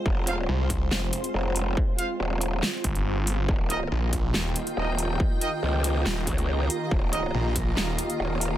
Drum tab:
HH |--x---x---xx--o-|--x---x---xx--o-|--x---x---xx--o-|--x---x---xx--o-|
CP |--------x-------|--------x-------|--------x-------|--------x-------|
SD |--------o-------|--------o-------|--------o-------|--------o-------|
BD |o-----o---------|o---------o-----|o-----o---------|o---------o-----|

HH |--x---x---xx--o-|
CP |--------x-------|
SD |--------o-------|
BD |o-----o---------|